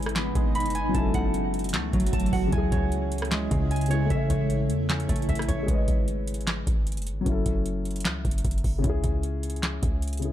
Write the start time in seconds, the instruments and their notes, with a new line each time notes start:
Already playing: 808-style bass G#1, ambient pad B2 G#3 D#4, grand piano G#3 G#4 B4 D#5, harp C#4 C#5 E5 G#5 B5
0.02 cross-stick, closed hi-hat
0.09 closed hi-hat
0.16 harp B3, snare, clap, closed hi-hat
0.35 808-style bass G#1, harp G#3, kick, closed hi-hat
0.55 harp B5, closed hi-hat
0.60 closed hi-hat
0.66 808-style bass F#1, closed hi-hat
0.70 closed hi-hat
0.75 harp G#5, closed hi-hat
0.80 808-style bass G#1
0.89 grand piano F#3 C#4
0.94 808-style bass F#1, ambient pad E3 A3 F#4, grand piano E4, harp A5, kick, closed hi-hat
1.00 grand piano A4
1.14 808-style bass F#1, harp F#5, kick, closed hi-hat
1.34 closed hi-hat
1.54 closed hi-hat, open hi-hat
1.59 closed hi-hat
1.64 closed hi-hat
1.69 closed hi-hat
1.74 808-style bass C#2, harp A3, snare, clap
1.93 808-style bass F#1, harp F#3, kick, closed hi-hat
2.00 closed hi-hat
2.06 closed hi-hat
2.13 808-style bass F#1, harp A5, kick, closed hi-hat
2.20 closed hi-hat
2.26 closed hi-hat
2.33 808-style bass F#1, harp F#5, kick, open hi-hat
2.47 grand piano C#3 C#4
2.52 808-style bass C#2, ambient pad C#3 G#3 E4, grand piano E4, harp G#5, kick, closed hi-hat
2.58 grand piano G#4
2.72 808-style bass C#2, harp C#5, kick, closed hi-hat
2.92 closed hi-hat
3.12 closed hi-hat
3.18 cross-stick, closed hi-hat
3.25 closed hi-hat
3.31 harp G#3, snare, clap, closed hi-hat
3.51 808-style bass C#2, harp C#3, kick, closed hi-hat
3.71 harp G#5, closed hi-hat
3.76 closed hi-hat
3.81 closed hi-hat
3.86 grand piano C#3, closed hi-hat
3.90 grand piano C#4 E4 G#4, harp C#5, closed hi-hat
4.05 grand piano A3 A4
4.10 808-style bass A1, ambient pad A3 E4, grand piano C#5, harp E5, kick, closed hi-hat
4.16 grand piano E5
4.30 808-style bass A1, harp C#5, kick, closed hi-hat
4.50 closed hi-hat
4.70 808-style bass E2, closed hi-hat
4.89 harp C#4, snare, clap, closed hi-hat
5.00 closed hi-hat
5.09 808-style bass A1, harp A3, kick, closed hi-hat
5.16 closed hi-hat
5.22 closed hi-hat
5.29 808-style bass A1, harp E5, kick, closed hi-hat
5.35 cross-stick, closed hi-hat
5.42 closed hi-hat
5.48 808-style bass A1, harp C#5, kick, closed hi-hat
5.63 grand piano G#3 G#4
5.68 808-style bass G#1, grand piano B4, kick, closed hi-hat
5.74 grand piano D#5
5.88 808-style bass G#1, kick, closed hi-hat
6.08 closed hi-hat
6.27 closed hi-hat
6.34 closed hi-hat
6.41 closed hi-hat
6.47 snare, clap, closed hi-hat
6.67 808-style bass G#1, kick, closed hi-hat
6.87 closed hi-hat
6.92 closed hi-hat
6.97 808-style bass F#1, closed hi-hat
7.02 closed hi-hat
7.07 closed hi-hat
7.12 808-style bass G#1
7.21 grand piano F#3 C#4
7.26 808-style bass F#1, grand piano E4, kick, closed hi-hat
7.32 grand piano A4
7.46 808-style bass F#1, kick, closed hi-hat
7.66 closed hi-hat
7.85 closed hi-hat, open hi-hat
7.91 closed hi-hat
7.96 closed hi-hat
8.00 closed hi-hat
8.05 808-style bass C#2, snare, clap, closed hi-hat
8.25 808-style bass F#1, kick, closed hi-hat
8.31 closed hi-hat
8.38 closed hi-hat
8.45 808-style bass F#1, kick, closed hi-hat
8.51 closed hi-hat
8.58 closed hi-hat
8.64 808-style bass F#1, kick, open hi-hat
8.79 grand piano C#3 C#4
8.84 808-style bass C#2, grand piano E4, kick, closed hi-hat
8.89 grand piano G#4
9.04 808-style bass C#2, kick, closed hi-hat
9.23 closed hi-hat
9.43 closed hi-hat
9.50 closed hi-hat
9.56 closed hi-hat
9.63 snare, clap, closed hi-hat
9.83 808-style bass C#2, kick, closed hi-hat
10.02 closed hi-hat
10.08 closed hi-hat
10.13 closed hi-hat
10.17 grand piano C#3 C#4, closed hi-hat
10.22 grand piano E4 G#4, closed hi-hat